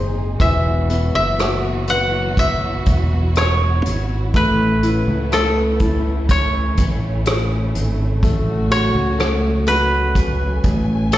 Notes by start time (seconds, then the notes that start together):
Already playing: F#1 C3 D#3 G#3 D#4 G#4 C5
0.40 E1 B2 E3 F#3 E4 F#4 E5, kick, closed hi-hat
0.89 B3, closed hi-hat
1.15 F#1 E5
1.39 F#4, cross-stick, closed hi-hat
1.88 B4 F#5, closed hi-hat
2.37 E5, kick, closed hi-hat
2.86 E1, kick, closed hi-hat
3.35 C#5, cross-stick, closed hi-hat
3.86 G#1, closed hi-hat
4.34 A1 C#3 E3 A3 B3 B4, kick, closed hi-hat
4.83 E4, closed hi-hat
5.08 C#2
5.32 A3 A4, cross-stick, closed hi-hat
5.80 E4, kick, closed hi-hat
6.29 C#4 C#5, kick, closed hi-hat
6.77 A1, kick, closed hi-hat
7.26 cross-stick, closed hi-hat
7.75 G#1, closed hi-hat
8.23 A1 F#3 A3 F#4, kick, closed hi-hat
8.71 F#4 C#5, closed hi-hat
8.95 C#2
9.18 A3, cross-stick, closed hi-hat
9.67 F#4 B4, closed hi-hat
10.15 G#5, kick, closed hi-hat
10.64 A1, kick, closed hi-hat
11.12 A4, cross-stick, closed hi-hat